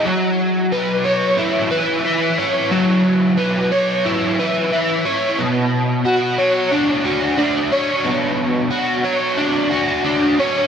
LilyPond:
\new Staff \with { instrumentName = "Overdriven electric guitar" } { \time 4/4 \key fis \mixolydian \tempo 4 = 90 fis4 b'8 cis''8 e'8 b'8 e'8 cis''8 | fis4 b'8 cis''8 e'8 b'8 e'8 cis''8 | b,4 fis'8 cis''8 d'8 fis'8 d'8 cis''8 | b,4 fis'8 cis''8 d'8 fis'8 d'8 cis''8 | }